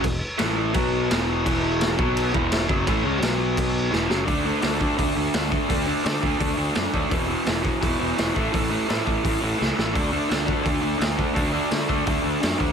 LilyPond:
<<
  \new Staff \with { instrumentName = "Overdriven electric guitar" } { \clef bass \time 4/4 \key b \mixolydian \tempo 4 = 170 <e, b,>8 r8 <a, e a>4 <b, fis b>4 <e, b, e>4 | <e, b, e>4. <b, fis b>4 <e, b, e>4 <fis, cis fis>8 | <a, e a>8 <cis gis cis'>8 <b, fis b>2 <e, b, e>8 <fis, cis fis>8 | \key d \lydian <d a d'>8 <d a d'>8 <d a d'>8 <d a d'>8 <d a d'>8 <d a d'>8 <d a d'>8 <d a d'>8 |
<d a d'>8 <d a d'>8 <d a d'>8 <d a d'>8 <d a d'>8 <d a d'>8 <d a d'>8 <d a d'>8 | <e, b, e>8 <e, b, e>8 <e, b, e>8 <e, b, e>8 <e, b, e>8 <e, b, e>8 <e, b, e>8 <a, e a>8 | <a, e a>8 <a, e a>8 <a, e a>8 <a, e a>8 <a, e a>8 <a, e a>8 <a, e a>8 <a, e a>8 | <d a d'>8 <d a d'>8 <d a d'>8 <d a d'>8 <d a d'>8 <d a d'>8 <d a d'>8 <d a d'>8 |
<d a d'>8 <d a d'>8 <d a d'>8 <d a d'>8 <d a d'>8 <d a d'>8 <d a d'>8 <d a d'>8 | }
  \new Staff \with { instrumentName = "Picked electric bass" } { \clef bass \time 4/4 \key b \mixolydian e,,8 r8 a,,4 b,,4 e,,4 | e,,4. b,,4 e,,4 fis,,8 | a,,8 cis,8 b,,2 e,,8 fis,,8 | \key d \lydian d,4 d,4 d,8 d,8 d,4 |
d,4 d8 d,8 d,8 d,8 fis,8 dis,8 | e,,4 e,,4 e,,8 e,,8 e,,8 a,,8 | a,,4 a,8 a,,8 a,,8 a,,8 cis,8 a,,8 | d,4 d,4 d,8 d,8 d,4 |
d,4 d8 d,8 d,8 d,8 fis,8 dis,8 | }
  \new DrumStaff \with { instrumentName = "Drums" } \drummode { \time 4/4 <cymc bd>4 <cymc sn>4 <cymc bd>4 <cymc sn>4 | <cymc bd>4 <cymc sn>8 bd8 cymc8 bd8 <cymc sn>8 bd8 | <cymc bd>4 <cymc sn>4 <cymc bd>4 sn8 sn8 | <hho bd>4 <hho sn>8 bd8 <hho bd>4 <hho sn>8 bd8 |
<hho bd>4 <hho sn>8 bd8 <hho bd>4 <hho sn>8 bd8 | <hho bd>4 <hho sn>8 bd8 <hho bd>4 <hho sn>8 bd8 | <hho bd>4 <hho sn>8 bd8 <hho bd>4 sn8 sn8 | <hho bd>4 <hho sn>8 bd8 <hho bd>4 <hho sn>8 bd8 |
<hho bd>4 <hho sn>8 bd8 <hho bd>4 <hho sn>8 bd8 | }
>>